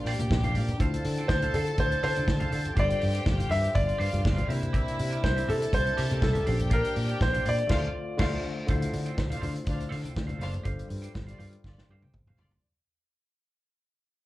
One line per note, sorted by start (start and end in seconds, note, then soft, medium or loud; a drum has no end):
0.00 0.50 A#2 medium
0.00 0.75 G3 medium
0.00 0.50 A#3 soft
0.00 0.78 A#3 medium
0.00 0.51 D4 medium
0.00 0.78 D4 loud
0.00 0.51 G4 medium
0.00 0.52 C5 medium
0.00 0.50 D5 loud
0.05 0.14 A#2 medium
0.05 0.79 G4 medium
0.05 0.20 G4 loud
0.05 0.19 D5 loud
0.05 0.19 F5 loud
0.05 0.78 G5 medium
0.05 open hi-hat medium
0.19 0.27 A#2 loud
0.19 0.31 G4 medium
0.19 0.31 D5 medium
0.19 0.32 G5 medium
0.19 closed hi-hat soft
0.19 high conga medium
0.30 0.56 A#1 loud
0.30 muted clean electric guitar stroke soft
0.30 kick loud
0.30 snare loud
0.44 0.55 G4 medium
0.44 0.55 D5 medium
0.44 0.56 F5 loud
0.44 closed hi-hat soft
0.44 high conga medium
0.44 low conga medium
0.55 0.71 A#2 loud
0.55 0.71 G4 medium
0.55 0.68 D5 medium
0.55 0.68 F5 medium
0.55 open hi-hat medium
0.55 muted conga soft
0.68 closed hi-hat soft
0.68 low conga medium
0.78 0.96 D2 loud
0.78 2.72 D3 medium
0.78 2.75 D3 medium
0.78 4.45 F3 medium
0.78 2.74 A3 medium
0.78 4.45 C4 medium
0.78 2.72 D4 medium
0.78 2.73 E4 medium
0.78 2.73 F4 medium
0.78 2.73 A4 medium
0.78 1.03 A4 medium
0.78 2.73 C5 medium
0.78 1.03 C5 medium
0.78 1.03 F5 loud
0.78 2.73 A5 loud
0.78 kick loud
0.78 closed hi-hat medium
0.94 closed hi-hat medium
1.04 1.21 D3 loud
1.04 muted clean electric guitar stroke soft
1.04 open hi-hat medium
1.04 muted conga soft
1.17 1.29 A4 medium
1.17 1.29 C5 medium
1.17 1.31 G5 medium
1.17 closed hi-hat soft
1.28 1.45 D2 loud
1.28 1.54 C5 medium
1.28 kick loud
1.28 snare loud
1.42 1.53 A4 soft
1.42 1.54 C5 medium
1.42 1.54 F5 medium
1.42 closed hi-hat medium
1.42 high conga medium
1.54 1.70 D3 loud
1.54 1.73 A4 medium
1.54 1.79 A4 medium
1.54 1.67 C5 medium
1.54 1.66 F5 medium
1.54 open hi-hat medium
1.54 low conga medium
1.67 muted clean electric guitar stroke medium
1.67 closed hi-hat soft
1.78 1.94 D2 loud
1.78 2.02 C5 loud
1.78 muted clean electric guitar stroke soft
1.78 kick loud
1.78 closed hi-hat medium
1.78 muted conga soft
1.92 muted clean electric guitar stroke soft
1.92 closed hi-hat soft
2.03 2.12 D3 loud
2.03 2.16 A4 loud
2.03 2.16 C5 loud
2.03 2.73 C5 loud
2.03 2.16 F5 loud
2.03 open hi-hat medium
2.03 muted conga soft
2.16 2.24 D3 medium
2.16 2.26 A4 medium
2.16 2.27 C5 medium
2.16 2.28 G5 medium
2.16 closed hi-hat soft
2.16 high conga medium
2.28 2.44 D2 loud
2.28 kick loud
2.28 snare loud
2.28 muted conga soft
2.40 2.51 A4 medium
2.40 2.52 C5 medium
2.40 2.52 F5 loud
2.40 closed hi-hat soft
2.40 high conga medium
2.40 low conga medium
2.52 2.69 D3 loud
2.52 2.68 A4 medium
2.52 2.65 C5 medium
2.52 2.63 F5 medium
2.52 open hi-hat medium
2.52 muted conga soft
2.64 muted clean electric guitar stroke soft
2.64 closed hi-hat medium
2.64 low conga medium
2.75 2.93 G1 medium
2.75 4.45 G3 medium
2.75 7.66 G3 medium
2.75 4.46 D4 medium
2.75 4.46 F4 medium
2.75 3.73 G4 medium
2.75 2.99 G4 medium
2.75 4.46 A4 medium
2.75 3.00 C5 medium
2.75 4.47 C5 medium
2.75 3.00 F5 loud
2.75 3.74 G5 loud
2.75 kick loud
2.75 closed hi-hat medium
2.79 3.24 D5 loud
2.90 closed hi-hat medium
3.00 3.19 G2 loud
3.00 muted clean electric guitar stroke soft
3.00 open hi-hat medium
3.00 muted conga soft
3.13 3.24 G4 medium
3.13 3.25 C5 medium
3.13 3.26 G5 medium
3.13 closed hi-hat medium
3.25 3.42 G1 medium
3.25 muted clean electric guitar stroke soft
3.25 kick loud
3.25 snare loud
3.37 3.48 G4 medium
3.37 3.48 C5 medium
3.37 3.48 F5 medium
3.37 closed hi-hat medium
3.37 high conga medium
3.49 3.67 G2 loud
3.49 3.69 G4 medium
3.49 3.62 C5 medium
3.49 3.76 E5 loud
3.49 3.61 F5 medium
3.49 open hi-hat medium
3.49 muted conga soft
3.49 low conga medium
3.62 muted clean electric guitar stroke soft
3.62 closed hi-hat soft
3.74 3.92 G1 loud
3.74 4.48 F4 medium
3.74 4.45 D5 loud
3.74 4.48 F5 medium
3.74 muted clean electric guitar stroke soft
3.74 kick loud
3.74 closed hi-hat medium
3.74 muted conga soft
3.87 muted clean electric guitar stroke soft
3.87 closed hi-hat soft
3.98 4.09 G2 medium
3.98 4.11 G4 loud
3.98 4.10 C5 loud
3.98 4.10 F5 loud
3.98 open hi-hat medium
3.98 muted conga soft
4.11 4.21 G2 loud
4.11 4.22 G4 medium
4.11 4.22 C5 medium
4.11 4.23 G5 medium
4.11 closed hi-hat medium
4.11 high conga medium
4.23 4.41 G1 loud
4.23 muted clean electric guitar stroke soft
4.23 kick loud
4.23 snare loud
4.36 4.47 G4 medium
4.36 4.48 C5 medium
4.36 4.49 F5 medium
4.36 closed hi-hat soft
4.36 high conga medium
4.36 low conga loud
4.48 6.44 C3 medium
4.48 6.42 C3 medium
4.48 4.82 C3 loud
4.48 6.43 A#3 medium
4.48 7.67 A#3 medium
4.48 6.43 D4 medium
4.48 5.45 E4 medium
4.48 6.45 E4 medium
4.48 6.43 E4 medium
4.48 4.64 G4 medium
4.48 4.62 A#4 medium
4.48 6.44 C5 medium
4.48 5.46 E5 medium
4.48 4.61 E5 medium
4.48 open hi-hat medium
4.62 muted clean electric guitar stroke soft
4.62 closed hi-hat soft
4.62 low conga medium
4.73 4.96 G4 medium
4.73 4.97 A#4 medium
4.73 4.97 E5 medium
4.73 kick loud
4.73 closed hi-hat medium
4.73 muted conga soft
4.88 closed hi-hat medium
4.98 5.16 C3 loud
4.98 muted clean electric guitar stroke soft
4.98 open hi-hat medium
4.98 muted conga soft
5.11 5.22 G4 medium
5.11 5.23 A#4 medium
5.11 5.24 G5 medium
5.11 closed hi-hat soft
5.23 5.40 C2 loud
5.23 5.49 C5 medium
5.23 muted clean electric guitar stroke medium
5.23 kick loud
5.23 snare loud
5.36 5.46 G4 medium
5.36 5.47 A#4 medium
5.36 5.47 E5 medium
5.36 closed hi-hat medium
5.36 high conga medium
5.47 5.65 C3 loud
5.47 5.67 G4 medium
5.47 6.45 A4 medium
5.47 5.74 A4 medium
5.47 5.61 A#4 medium
5.47 5.60 E5 loud
5.47 6.45 A5 loud
5.47 open hi-hat medium
5.47 low conga medium
5.61 muted clean electric guitar stroke medium
5.61 closed hi-hat medium
5.73 5.89 C2 loud
5.73 6.24 C5 loud
5.73 muted clean electric guitar stroke soft
5.73 kick loud
5.73 closed hi-hat medium
5.86 muted clean electric guitar stroke medium
5.86 closed hi-hat soft
5.97 6.07 C3 loud
5.97 6.10 G4 loud
5.97 6.09 A#4 loud
5.97 6.10 E5 loud
5.97 open hi-hat medium
6.10 6.19 C3 loud
6.10 6.20 G4 soft
6.10 6.20 A#4 medium
6.10 6.22 G5 medium
6.10 closed hi-hat soft
6.10 high conga medium
6.21 6.38 C2 loud
6.21 6.73 A4 loud
6.21 muted clean electric guitar stroke soft
6.21 kick loud
6.21 snare loud
6.21 muted conga soft
6.33 6.45 G4 medium
6.33 6.46 A#4 medium
6.33 6.46 E5 medium
6.33 closed hi-hat soft
6.33 high conga medium
6.33 low conga medium
6.45 6.79 A#1 loud
6.45 7.67 A#2 medium
6.45 7.67 A#3 medium
6.45 6.53 C#4 soft
6.45 7.69 D4 medium
6.45 6.62 G4 medium
6.45 7.68 G4 medium
6.45 7.68 C5 medium
6.45 6.59 D5 medium
6.45 6.58 F5 medium
6.45 7.67 G5 loud
6.45 open hi-hat medium
6.45 muted conga soft
6.53 7.71 D4 medium
6.59 muted clean electric guitar stroke medium
6.59 closed hi-hat medium
6.59 low conga medium
6.70 6.94 G4 medium
6.70 7.23 A#4 loud
6.70 6.94 D5 medium
6.70 6.94 F5 medium
6.70 kick loud
6.70 closed hi-hat medium
6.84 closed hi-hat medium
6.95 7.12 A#2 loud
6.95 muted clean electric guitar stroke soft
6.95 open hi-hat medium
6.95 muted conga soft
7.08 7.19 G4 medium
7.08 7.19 D5 medium
7.08 7.20 G5 medium
7.08 closed hi-hat soft
7.21 7.37 A#1 loud
7.21 7.47 C5 loud
7.21 kick loud
7.21 snare loud
7.21 muted conga soft
7.33 7.44 G4 medium
7.33 7.45 D5 medium
7.33 7.45 F5 medium
7.33 closed hi-hat medium
7.33 high conga medium
7.45 7.62 A#2 loud
7.45 7.65 G4 medium
7.45 7.58 D5 medium
7.45 8.42 D5 loud
7.45 7.58 F5 medium
7.45 open hi-hat medium
7.45 muted conga soft
7.45 low conga medium
7.58 muted clean electric guitar stroke medium
7.58 closed hi-hat soft
7.67 7.87 D2 loud
7.67 7.85 D3 medium
7.67 7.85 A3 loud
7.67 7.87 F4 medium
7.67 7.87 C5 loud
7.67 7.87 F5 loud
7.67 kick loud
7.67 snare loud
7.67 crash medium
7.71 8.50 D3 medium
7.71 8.50 A3 medium
7.71 8.51 C4 medium
7.71 7.87 F4 loud
7.71 8.51 F4 medium
7.71 7.88 A4 loud
7.71 7.88 C5 loud
7.71 7.87 F5 loud
8.17 8.36 D2 loud
8.17 8.35 D3 loud
8.17 8.36 A3 loud
8.17 8.36 F4 medium
8.17 8.37 F4 loud
8.17 8.37 A4 loud
8.17 8.37 C5 loud
8.17 8.36 F5 loud
8.17 8.37 F5 medium
8.17 kick loud
8.17 snare loud
8.17 crash loud
8.66 8.85 D2 medium
8.66 10.61 D3 medium
8.66 10.63 D3 medium
8.66 10.64 F3 medium
8.66 10.61 A3 medium
8.66 10.63 A3 medium
8.66 12.58 C4 medium
8.66 10.61 E4 medium
8.66 10.62 F4 medium
8.66 8.92 A4 medium
8.66 10.62 C5 medium
8.66 8.92 C5 medium
8.66 kick loud
8.66 closed hi-hat medium
8.66 muted conga soft
8.70 8.92 F5 loud
8.82 closed hi-hat medium
8.93 9.10 D3 loud
8.93 muted clean electric guitar stroke soft
8.93 open hi-hat medium
8.93 muted conga soft
9.06 9.16 A4 medium
9.06 9.17 C5 medium
9.06 9.18 G5 medium
9.06 closed hi-hat soft
9.17 9.34 D2 loud
9.17 muted clean electric guitar stroke soft
9.17 kick loud
9.17 snare loud
9.30 9.42 D4 medium
9.30 9.39 A4 medium
9.30 9.40 C5 medium
9.30 9.42 C5 medium
9.30 9.41 F5 medium
9.30 9.42 F5 medium
9.30 closed hi-hat medium
9.30 high conga medium
9.40 9.59 D3 loud
9.40 9.61 A4 medium
9.40 9.54 C5 medium
9.40 9.54 F5 medium
9.40 open hi-hat medium
9.40 low conga medium
9.55 muted clean electric guitar stroke soft
9.55 closed hi-hat soft
9.65 9.83 D2 loud
9.65 9.79 D4 medium
9.65 muted clean electric guitar stroke soft
9.65 kick loud
9.65 closed hi-hat medium
9.65 muted conga soft
9.69 9.79 C5 medium
9.69 9.79 F5 medium
9.79 muted clean electric guitar stroke medium
9.79 closed hi-hat soft
9.89 10.08 D3 medium
9.89 10.03 A4 medium
9.89 10.03 C5 medium
9.89 10.03 F5 medium
9.89 open hi-hat medium
10.03 10.13 A4 soft
10.03 10.13 C5 medium
10.03 10.15 G5 medium
10.03 closed hi-hat soft
10.03 high conga medium
10.14 10.32 D2 medium
10.14 muted clean electric guitar stroke soft
10.14 kick loud
10.14 snare loud
10.27 10.37 A4 medium
10.27 10.38 C5 medium
10.27 10.39 F5 medium
10.27 closed hi-hat soft
10.27 high conga medium
10.27 low conga medium
10.38 10.56 F#1 medium
10.38 10.63 D4 loud
10.38 10.55 A4 medium
10.38 10.51 C5 medium
10.38 10.63 C5 loud
10.38 10.51 F5 medium
10.38 10.62 F5 loud
10.38 open hi-hat medium
10.38 muted conga soft
10.52 muted clean electric guitar stroke soft
10.52 closed hi-hat soft
10.52 low conga medium
10.63 10.82 G1 loud
10.63 12.57 G3 medium
10.63 12.58 D4 medium
10.63 12.58 F4 medium
10.63 10.87 G4 medium
10.63 12.58 A4 medium
10.63 10.88 C5 medium
10.63 12.59 C5 medium
10.63 10.88 F5 loud
10.63 kick loud
10.63 closed hi-hat medium
10.67 12.62 G3 medium
10.67 12.62 F4 medium
10.79 closed hi-hat soft
10.88 11.07 G2 loud
10.88 muted clean electric guitar stroke soft
10.88 open hi-hat medium
11.02 11.12 G4 medium
11.02 11.13 C5 medium
11.02 11.14 G5 medium
11.02 closed hi-hat medium
11.14 11.31 G1 loud
11.14 muted clean electric guitar stroke soft
11.14 kick loud
11.14 snare loud
11.14 muted conga soft
11.27 11.38 G3 medium
11.27 11.38 F4 medium
11.27 11.37 G4 soft
11.27 11.38 C5 medium
11.27 11.38 D5 medium
11.27 11.38 F5 medium
11.27 closed hi-hat medium
11.27 high conga medium
11.38 11.55 G2 loud
11.38 11.58 G4 medium
11.38 11.53 C5 medium
11.38 11.52 F5 medium
11.38 open hi-hat medium
11.38 muted conga soft
11.38 low conga medium
11.53 muted clean electric guitar stroke soft
11.53 closed hi-hat soft
11.64 11.80 G1 loud
11.64 11.76 G3 medium
11.64 11.76 F4 medium
11.64 11.76 D5 loud
11.64 muted clean electric guitar stroke soft
11.64 kick loud
11.64 snare medium
11.64 muted conga soft
11.78 muted clean electric guitar stroke soft
11.78 snare medium
11.89 12.05 G2 loud
11.89 12.03 G4 medium
11.89 12.02 C5 medium
11.89 12.03 F5 medium
11.89 muted conga soft
12.02 12.14 G4 soft
12.02 12.14 C5 medium
12.02 12.15 G5 medium
12.02 high tom medium
12.02 high conga medium
12.14 12.30 G1 loud
12.14 kick loud
12.14 mid tom medium
12.14 muted conga soft
12.27 12.38 G4 medium
12.27 12.39 C5 medium
12.27 12.40 F5 medium
12.27 mid tom medium
12.27 high conga medium
12.27 low conga medium
12.38 12.56 F#1 medium
12.38 12.59 G3 medium
12.38 12.59 F4 medium
12.38 12.54 G4 medium
12.38 12.51 C5 medium
12.38 12.59 D5 loud
12.38 12.51 F5 medium
12.38 floor tom loud
12.38 muted conga soft
12.51 muted clean electric guitar stroke soft
12.51 floor tom medium
12.51 low conga medium